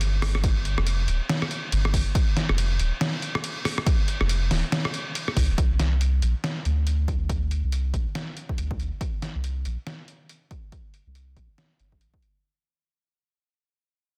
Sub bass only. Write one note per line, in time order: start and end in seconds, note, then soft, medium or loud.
0.00 0.76 G1 medium
0.78 1.07 F1 medium
1.08 1.20 D1 loud
1.72 2.05 G1 loud
2.49 2.78 F1 medium
2.79 2.91 D1 medium
4.21 4.50 F1 medium
4.51 4.63 D1 medium
5.37 5.48 C2 loud
5.49 5.57 D1 medium
5.58 6.21 C2 loud
6.22 6.34 A#1 medium
6.65 7.62 D2 medium
7.64 7.93 C2 medium
7.94 8.05 A#1 medium
8.58 8.91 D2 loud
9.35 9.64 C2 medium
9.65 9.77 A#1 medium
11.07 11.35 C2 medium
11.37 11.48 A#1 medium
11.79 12.02 G1 medium
12.01 12.13 A#1 medium